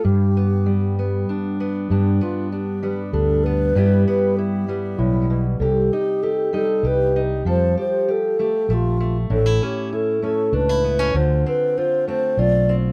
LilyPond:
<<
  \new Staff \with { instrumentName = "Alto flute" } { \time 3/4 \key g \mixolydian \tempo 4 = 97 g'2 r4 | g'8 f'8 g'4 a'8 b'8~ | b'8 b'8 g'4 e'8. r16 | a'8 g'8 a'8 a'8 b'8 r8 |
c''8 c''8 a'4 f'8. r16 | a'8 g'8 a'8 a'8 b'4 | c''8 b'8 c''8 c''8 d''8 r8 | }
  \new Staff \with { instrumentName = "Steel-string acoustic guitar" } { \time 3/4 \key g \mixolydian << { r8 b4 b8 d'8 b8 | d'8 b8 d'8 b8 d'8 b8 | <g b e' g'>8 b8 e'8 b4. | g'8 ees'8 g'8 ees'8 g'8 ees'8 |
a'8 g'8 g'8 g'8 a8 a8 | d'16 e'16 cis'8 e'8 cis'8 d'16 e'16 b16 cis'16 | f'8 c'8 f'8 c'8 f'8 c'8 | } \\ { g,4 g2 | g,4. g4. | g,4. g8 a,8 b,8 | c4. g4. |
f4. a8 r4 | a,4. a4. | d4. a4. | } >> }
  \new Staff \with { instrumentName = "Fretless electric bass" } { \clef bass \time 3/4 \key g \mixolydian g,2 r4 | g,8 r4. d,4 | g,8 r4. b,,4 | c,8 r4. c,4 |
f,8 r4. bes,,4 | a,,8 r4. cis,4 | d,8 r4. b,,4 | }
>>